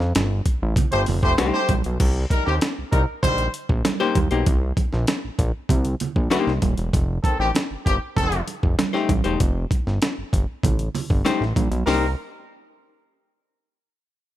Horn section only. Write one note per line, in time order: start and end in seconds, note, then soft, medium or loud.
0.92 1.02 A3 medium
0.92 1.02 G4 loud
0.92 1.02 C5 loud
1.23 1.33 A3 loud
1.23 1.33 G4 medium
1.23 1.33 C5 loud
1.54 1.74 A3 medium
1.54 1.73 G4 loud
1.54 1.74 C5 loud
2.30 2.43 G3 medium
2.30 2.43 D#4 medium
2.30 2.43 A#4 loud
2.46 2.55 D#3 medium
2.46 2.56 C4 medium
2.46 2.55 G4 loud
2.92 3.01 G3 medium
2.92 3.02 D#4 medium
2.92 3.01 A#4 medium
3.22 3.48 G3 loud
3.22 3.47 D#4 medium
3.22 3.48 C5 loud
7.23 7.36 D#3 medium
7.23 7.36 C4 medium
7.23 7.36 A4 loud
7.39 7.49 D#3 medium
7.39 7.49 C4 medium
7.39 7.49 G4 loud
7.86 7.95 D#3 medium
7.86 7.95 C4 medium
7.86 7.95 G4 medium
8.16 8.41 D#3 loud
8.16 8.41 C4 medium
8.16 8.41 A4 loud
11.86 12.08 G3 medium
11.86 12.08 D#4 medium
11.86 12.08 A#4 loud